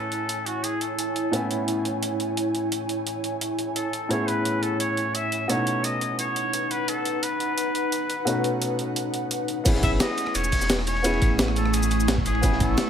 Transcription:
Already playing: grand piano A2 B3 C#4 E4 G#5, ambient pad E4 C#5 G#5, muted trumpet A4
0.12 closed hi-hat
0.29 closed hi-hat
0.46 muted trumpet F#4, closed hi-hat
0.64 muted trumpet G#4, closed hi-hat
0.81 muted trumpet A4, closed hi-hat
0.99 closed hi-hat
1.16 closed hi-hat
1.32 grand piano A2 B3 C#4 E4 G#5, closed hi-hat
1.51 closed hi-hat
1.68 closed hi-hat
1.85 closed hi-hat
2.03 closed hi-hat
2.20 closed hi-hat
2.37 closed hi-hat
2.55 closed hi-hat
2.72 closed hi-hat
2.89 closed hi-hat
3.07 closed hi-hat
3.24 closed hi-hat
3.41 closed hi-hat
3.59 closed hi-hat
3.76 muted trumpet A4, closed hi-hat
3.93 closed hi-hat
4.09 grand piano A2 B3 C#4 E4 G#4, muted trumpet C#5, closed hi-hat
4.28 muted trumpet B4, closed hi-hat
4.45 closed hi-hat
4.63 muted trumpet A4, closed hi-hat
4.80 muted trumpet C#5, closed hi-hat
4.97 closed hi-hat
5.15 muted trumpet E5, closed hi-hat
5.32 closed hi-hat
5.48 grand piano B2 A3 C#4 D#4 F#4, ambient pad D#4 B4 F#5, muted trumpet C#5, closed hi-hat
5.67 closed hi-hat
5.84 muted trumpet D#5, closed hi-hat
6.01 closed hi-hat
6.19 muted trumpet C#5, closed hi-hat
6.36 closed hi-hat
6.53 closed hi-hat
6.71 muted trumpet B4, closed hi-hat
6.88 muted trumpet A4, closed hi-hat
7.05 closed hi-hat
7.23 muted trumpet B4, closed hi-hat
7.40 closed hi-hat
7.58 closed hi-hat
7.75 closed hi-hat
7.92 closed hi-hat
8.10 closed hi-hat
8.25 grand piano B2 A3 C#4 D#4 F#4, closed hi-hat
8.44 closed hi-hat
8.62 closed hi-hat
8.79 closed hi-hat
8.96 closed hi-hat
9.14 closed hi-hat
9.31 closed hi-hat
9.48 closed hi-hat
9.64 sub bass A1, ambient pad A3 E4 G#5 C#6, grand piano B3 C#4 E4 G#4, kick, closed hi-hat, crash, ride, cabasa
9.75 snare
9.83 muted trumpet E5, kick, closed hi-hat, ride
10.00 muted trumpet D#5, snare, closed hi-hat, ride, cabasa
10.18 closed hi-hat, ride, cabasa
10.26 cross-stick, ride
10.35 sub bass E1, muted trumpet C#5, closed hi-hat, ride, cabasa
10.44 cabasa
10.52 kick, closed hi-hat, open hi-hat, cabasa
10.61 snare, cabasa
10.70 snare, closed hi-hat, ride, cabasa
10.79 cross-stick
10.87 muted trumpet C#5, closed hi-hat, ride, cabasa
10.96 ride
11.02 grand piano B3 C#4 E4 G#4, closed hi-hat, ride, cabasa
11.14 ride
11.22 sub bass A1, kick, closed hi-hat, ride
11.39 snare, closed hi-hat, ride, cabasa
11.48 cross-stick
11.56 muted trumpet A4, closed hi-hat, ride, cabasa
11.65 cross-stick
11.74 muted trumpet G#4, closed hi-hat, ride, cabasa
11.83 cabasa
11.91 closed hi-hat, ride, cabasa
12.00 cabasa
12.08 snare, closed hi-hat, ride, cabasa
12.18 kick, snare
12.26 muted trumpet G#4, closed hi-hat, ride, cabasa
12.35 ride
12.41 sub bass A1, grand piano B3 C#4 E4 G#5, kick, closed hi-hat, ride, cabasa
12.52 snare
12.60 muted trumpet A4, kick, closed hi-hat, ride
12.78 snare, closed hi-hat, ride, cabasa

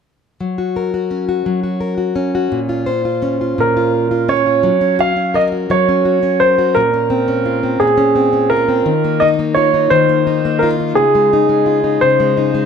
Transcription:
0.41 steel-string acoustic guitar F#3
0.58 steel-string acoustic guitar F#4
0.76 steel-string acoustic guitar A#4
0.94 steel-string acoustic guitar F#4
1.11 steel-string acoustic guitar C#4
1.29 steel-string acoustic guitar F#4
1.46 steel-string acoustic guitar F#3
1.63 steel-string acoustic guitar F#4
1.81 steel-string acoustic guitar A#4
1.98 steel-string acoustic guitar F#4
2.16 steel-string acoustic guitar C#4
2.35 steel-string acoustic guitar F#4
2.52 steel-string acoustic guitar A#2
2.69 steel-string acoustic guitar F4
2.86 steel-string acoustic guitar C5
3.05 steel-string acoustic guitar F4
3.22 steel-string acoustic guitar C#4
3.41 steel-string acoustic guitar F4
3.58 steel-string acoustic guitar A#2, grand piano A#4
3.77 steel-string acoustic guitar F4
4.11 steel-string acoustic guitar F4
4.29 steel-string acoustic guitar C#4, grand piano C#5
4.46 steel-string acoustic guitar F4
4.63 steel-string acoustic guitar F#3
4.81 steel-string acoustic guitar C#4
4.99 steel-string acoustic guitar F#4, grand piano F5
5.16 steel-string acoustic guitar C#4
5.34 steel-string acoustic guitar A#4, grand piano D#5
5.52 steel-string acoustic guitar F#4
5.70 steel-string acoustic guitar F#3, grand piano C#5
5.89 steel-string acoustic guitar C#4
6.05 steel-string acoustic guitar F#4
6.23 steel-string acoustic guitar C#4
6.40 steel-string acoustic guitar A#4, grand piano C5
6.58 steel-string acoustic guitar F#4
6.75 steel-string acoustic guitar A#2, grand piano A#4
6.94 steel-string acoustic guitar C#4
7.10 steel-string acoustic guitar C4
7.28 steel-string acoustic guitar C#4
7.46 steel-string acoustic guitar F4
7.63 steel-string acoustic guitar C4
7.80 steel-string acoustic guitar A#2, grand piano G#4
7.97 steel-string acoustic guitar C#4
8.15 steel-string acoustic guitar C4
8.33 steel-string acoustic guitar C#4
8.50 steel-string acoustic guitar F4, grand piano A#4
8.68 steel-string acoustic guitar C4
8.86 steel-string acoustic guitar D#3
9.04 steel-string acoustic guitar A#3
9.20 steel-string acoustic guitar D#4, grand piano D#5
9.39 steel-string acoustic guitar A#3
9.54 steel-string acoustic guitar F4, grand piano C#5
9.74 steel-string acoustic guitar D#4
9.90 steel-string acoustic guitar D#3, grand piano C5
10.09 steel-string acoustic guitar A#3
10.27 steel-string acoustic guitar D#4
10.45 steel-string acoustic guitar A#3
10.59 steel-string acoustic guitar F4, grand piano A#4
10.80 steel-string acoustic guitar D#4
10.95 steel-string acoustic guitar C#3, grand piano G#4
11.15 steel-string acoustic guitar G#3
11.33 steel-string acoustic guitar D#4
11.49 steel-string acoustic guitar G#3
11.66 steel-string acoustic guitar F4
11.84 steel-string acoustic guitar D#4
12.01 steel-string acoustic guitar C#3, grand piano C5
12.20 steel-string acoustic guitar G#3
12.37 steel-string acoustic guitar D#4
12.54 steel-string acoustic guitar G#3

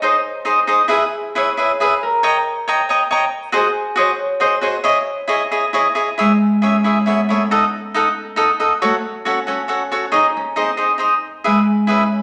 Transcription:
Already playing: harp A4 D#5
0.02 cavaquinho D#4 G#4 C5 D#5, harp C5
0.45 cavaquinho D#4 G#4 C5 D#5
0.67 cavaquinho D#4 G#4 C5 D#5
0.88 cavaquinho E4 G#4 B4 E5
0.92 harp G#4
1.35 cavaquinho E4 G#4 B4 E5, harp C#5
1.57 cavaquinho E4 G#4 B4 E5
1.80 cavaquinho E4 G#4 B4 E5, harp B4
2.03 harp A#4
2.23 cavaquinho C#5 D#5 G5 A#5
2.68 cavaquinho C#5 D#5 G5 A#5
2.89 cavaquinho C#5 D#5 G5 A#5
3.11 cavaquinho C#5 D#5 G5 A#5
3.52 cavaquinho F#4 G#4 C5 D#5
3.57 harp G#4
3.96 cavaquinho F#4 G#4 C5 D#5, harp C#5
4.40 cavaquinho F#4 G#4 C5 D#5, harp C5
4.61 cavaquinho F#4 G#4 C5 D#5, harp C#5
4.84 cavaquinho E4 G#4 C#5 D#5
5.28 cavaquinho E4 G#4 C#5 D#5
5.51 cavaquinho E4 G#4 C#5 D#5
5.73 cavaquinho E4 G#4 C#5 D#5
5.95 cavaquinho E4 G#4 C#5 D#5
6.18 harp G#3, cavaquinho E4 G#4 C#5 E5
6.62 harp C#4, cavaquinho E4 G#4 C#5 E5
6.84 cavaquinho E4 G#4 C#5 E5
7.06 harp B3, cavaquinho E4 G#4 C#5 E5
7.29 harp A3, cavaquinho E4 G#4 C#5 E5
7.51 cavaquinho D#4 A4 D#5 F#5
7.94 cavaquinho D#4 A4 D#5 F#5
8.36 cavaquinho D#4 A4 D#5 F#5
8.60 cavaquinho D#4 A4 D#5 F#5
8.82 harp A3, cavaquinho F#4 A4 C#5 F#5
9.25 harp C#4, cavaquinho F#4 A4 C#5 F#5
9.47 harp C#4, cavaquinho F#4 A4 C#5 F#5
9.68 cavaquinho F#4 A4 C#5 F#5
9.92 cavaquinho F#4 A4 C#5 F#5
10.12 cavaquinho D#4 G#4 C#5 D#5, harp D#4
10.37 harp C#4
10.56 harp C4, cavaquinho D#4 G#4 C5 D#5
10.77 cavaquinho D#4 G#4 C5 D#5
10.98 cavaquinho D#4 G#4 C5 D#5
11.44 harp G#3, cavaquinho E4 G#4 B4 E5
11.87 harp C#4, cavaquinho E4 G#4 B4 E5

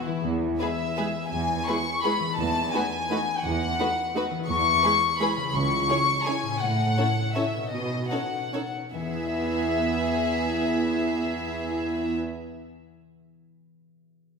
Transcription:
Already playing: harp B3 G#4 B4
0.06 harp E3 E4, violin section E4
0.12 harp B3
0.17 harp E4
0.21 harp G#4
0.25 cello section E2
0.60 viola section G#3 E4, violin section G#4 B4 E5
0.97 viola section G#3 E4, violin section G#4 B4
1.31 cello section E2, violin section G#5
1.67 viola section G#3 E4, violin section G#4 B4 C#6
2.03 viola section G#3 E4, violin section G#4 B4 B5
2.20 harp E3
2.24 harp B3
2.29 harp D#4
2.33 harp A4
2.38 cello section E2, violin section A5
2.74 viola section A3 D#4, violin section F#4 B4 G#5
3.10 viola section A3 D#4, violin section F#4 B4
3.43 cello section E2, violin section F#5
3.80 viola section A3 D#4, violin section F#4 B4
4.15 viola section A3 D#4, violin section F#4 B4
4.30 harp E3
4.35 harp B3
4.39 harp E4
4.44 harp G#4
4.48 cello section E2, violin section C#6
4.84 viola section G#3 E4, violin section G#4 B4
5.20 viola section G#3 E4, violin section G#4 B4 B5
5.36 harp C#3
5.41 harp C#4
5.45 harp E4
5.50 cello section C#2, harp G#4
5.55 violin section C#6
5.89 viola section C#4 E4, violin section G#4 C#5
6.25 viola section C#4 E4, violin section G#4 C#5 G#5
6.42 harp A2
6.47 harp C#4
6.51 harp E4
6.56 harp A4, violin section F#5
6.60 cello section A2
6.97 viola section C#4 E4, violin section A4 C#5
7.35 viola section C#4 E4, violin section A4 C#5 E5
7.54 harp B2
7.58 harp C#4
7.63 harp D#4 A4
7.72 cello section B2, violin section D#5
8.10 viola section C#4 D#4, violin section A4 C#5 F#5
8.53 viola section C#4 D#4, violin section A4 C#5
8.94 cello section E2, harp E3, viola section B3 E4, violin section G#4 E5
9.01 harp B3
9.08 harp E4
9.15 harp G#4
9.23 harp E5

